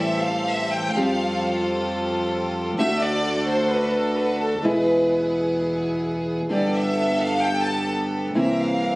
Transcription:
0.00 0.87 A1 medium
0.00 0.95 E3 medium
0.00 0.95 G3 medium
0.00 0.87 C4 medium
0.00 0.96 C4 medium
0.00 0.96 E4 medium
0.00 0.87 G4 medium
0.00 0.87 A4 medium
0.00 0.25 E5 medium
0.24 0.49 F5 medium
0.50 0.73 E5 medium
0.72 0.95 G5 medium
0.96 2.69 F2 medium
0.96 2.78 F3 medium
0.96 2.78 G3 medium
0.96 2.78 C4 medium
0.96 2.70 F4 medium
0.96 2.70 G4 medium
0.96 2.79 G4 medium
0.96 2.70 A4 medium
0.96 1.65 F5 medium
2.78 4.53 D2 medium
2.78 4.62 D3 medium
2.78 4.62 A3 medium
2.78 4.54 D4 medium
2.78 4.63 D4 medium
2.78 4.54 F#4 medium
2.78 4.63 F#4 medium
2.78 4.54 A4 medium
2.78 3.00 E5 medium
3.01 3.47 D5 loud
3.47 3.69 C5 medium
3.71 3.94 B4 medium
3.92 4.16 A4 medium
4.16 4.40 B4 medium
4.40 4.61 A4 medium
4.62 6.40 E2 medium
4.62 6.49 B2 medium
4.62 6.49 E3 medium
4.62 6.49 G#3 medium
4.62 6.40 B3 medium
4.62 6.49 B3 medium
4.62 6.40 E4 medium
4.62 6.50 E4 medium
4.62 6.40 G#4 medium
4.62 5.32 B4 medium
6.49 8.27 G1 medium
6.49 8.35 D3 medium
6.49 8.35 G3 medium
6.49 8.27 B3 medium
6.49 8.36 B3 medium
6.49 8.28 G4 medium
6.49 8.36 G4 medium
6.49 8.27 A4 medium
6.49 6.73 D5 medium
6.75 7.21 E5 medium
7.19 7.43 F5 medium
7.43 7.67 G5 medium
7.64 7.89 A5 medium
8.34 8.96 C2 medium
8.34 8.96 C3 medium
8.34 8.96 E3 medium
8.34 8.96 A#3 medium
8.34 8.96 C4 medium
8.34 8.96 A#4 medium
8.34 8.58 E5 medium
8.60 8.96 F5 medium

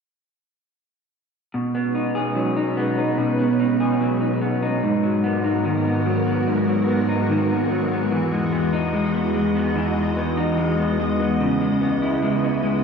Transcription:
1.54 3.17 B2 medium
1.54 4.80 B2 medium
1.54 11.36 G#3 medium
1.54 4.80 C#4 medium
1.54 4.80 D#4 medium
1.54 4.80 B4 medium
1.75 2.77 B3 soft
1.95 2.56 D#4 soft
2.15 3.80 G#4 soft
2.35 4.00 F#3 medium
2.56 2.97 D#4 soft
2.77 3.38 B3 soft
2.97 3.59 D#4 soft
3.18 4.82 B2 medium
3.38 4.41 B3 soft
3.60 4.20 D#4 medium
3.80 5.06 G#4 soft
4.01 5.03 F#3 medium
4.21 4.62 D#4 soft
4.41 5.23 B3 soft
4.63 5.44 D#4 soft
4.82 6.46 G#2 medium
4.82 8.08 G#2 medium
4.82 8.08 B3 medium
4.82 11.37 F#4 medium
4.82 8.08 A#4 medium
5.03 6.05 F#3 soft
5.24 5.85 B3 soft
5.44 7.08 D#4 soft
5.65 7.29 D#3 soft
5.85 6.26 B3 soft
6.06 6.66 F#3 soft
6.26 6.88 B3 soft
6.47 8.20 G#2 medium
6.67 7.69 F#3 soft
6.88 7.49 B3 soft
7.09 8.73 D#4 soft
7.29 8.11 D#3 medium
7.50 7.91 B3 soft
7.70 8.20 F#3 soft
7.91 8.52 B3 soft
8.11 11.37 E2 medium
8.11 9.75 E3 medium
8.11 11.38 E3 medium
8.11 12.84 D#5 medium
8.32 8.93 G#3 soft
8.52 9.14 B3 soft
8.73 10.36 D#4 medium
8.93 9.34 G#3 medium
9.14 9.55 B3 soft
9.35 9.96 G#3 soft
9.55 10.16 B3 soft
9.76 11.40 E3 medium
9.96 10.57 G#3 soft
10.17 10.78 B3 medium
10.37 11.48 D#4 medium
10.58 10.99 G#3 medium
10.78 11.19 B3 soft
11.00 11.60 G#3 soft
11.20 11.81 B3 soft
11.40 12.84 C#2 medium
11.40 12.84 C#3 medium
11.40 12.84 B3 medium
11.40 12.84 E4 medium
11.61 12.22 G#3 medium
11.81 12.42 B3 soft
12.02 12.84 E4 medium
12.22 12.63 G#3 medium
12.43 12.84 B3 soft
12.63 12.84 G#3 soft

